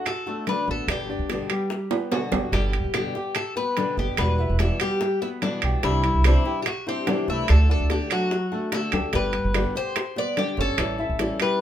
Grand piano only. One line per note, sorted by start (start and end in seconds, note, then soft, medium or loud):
0.00 0.20 F#4 medium
0.00 0.20 F#5 medium
0.27 0.44 A3 medium
0.27 0.44 A4 medium
0.48 0.65 D4 medium
0.48 0.65 D5 medium
0.69 1.02 B3 medium
0.69 1.02 B4 medium
1.09 1.43 D4 medium
1.09 1.43 D5 medium
1.50 1.84 G3 medium
1.50 1.85 G4 medium
1.91 2.25 B3 medium
1.91 2.25 B4 medium
2.32 2.50 G4 medium
2.32 2.50 G5 medium
2.53 2.87 G3 medium
2.53 2.87 G4 medium
2.95 3.12 B3 medium
2.95 3.12 B4 medium
3.16 3.49 G4 medium
3.16 3.49 G5 medium
3.57 3.74 B3 medium
3.57 3.74 B4 medium
3.77 3.94 D4 medium
3.77 3.94 D5 medium
3.98 4.32 B3 medium
3.98 4.32 B4 medium
4.40 4.73 E4 medium
4.40 4.73 E5 medium
4.81 5.15 G3 medium
4.81 5.15 G4 medium
5.22 5.56 B3 medium
5.22 5.56 B4 medium
5.64 5.80 G4 medium
5.64 5.80 G5 medium
5.84 6.18 G3 medium
5.84 6.18 G4 medium
6.25 6.42 C4 medium
6.25 6.42 C5 medium
6.46 6.79 G4 medium
6.46 6.80 G5 medium
6.87 7.04 C4 medium
6.87 7.04 C5 medium
7.08 7.25 D4 medium
7.08 7.25 D5 medium
7.29 7.62 A3 medium
7.29 7.62 A4 medium
7.70 8.03 D4 medium
7.70 8.03 D5 medium
8.11 8.45 F#3 medium
8.11 8.45 F#4 medium
8.52 8.86 A3 medium
8.52 8.86 A4 medium
8.93 9.10 G4 medium
8.93 9.10 G5 medium
9.14 9.48 G3 medium
9.14 9.48 G4 medium
9.55 9.72 B3 medium
9.55 9.72 B4 medium
9.76 10.09 G4 medium
9.76 10.10 G5 medium
10.17 10.34 B3 medium
10.17 10.34 B4 medium
10.38 10.55 D4 medium
10.38 10.55 D5 medium
10.59 10.92 C#4 medium
10.59 10.92 C#5 medium
10.99 11.33 E4 medium
10.99 11.33 E5 medium
11.40 11.61 G3 medium
11.40 11.61 G4 medium